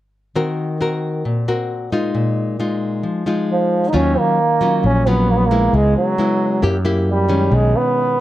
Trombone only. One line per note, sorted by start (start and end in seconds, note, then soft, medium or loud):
3.51 3.90 F3 medium
3.89 3.97 D#4 medium
3.95 4.20 C#4 loud
4.19 4.85 A#3 medium
4.86 5.10 C#4 medium
5.08 5.32 B3 medium
5.30 5.38 A#3 medium
5.36 5.47 B3 medium
5.46 5.77 A#3 medium
5.75 5.97 G#3 medium
5.97 6.82 F#3 medium
7.09 7.56 G3 medium
7.55 7.78 G#3 medium
7.77 8.20 B3 medium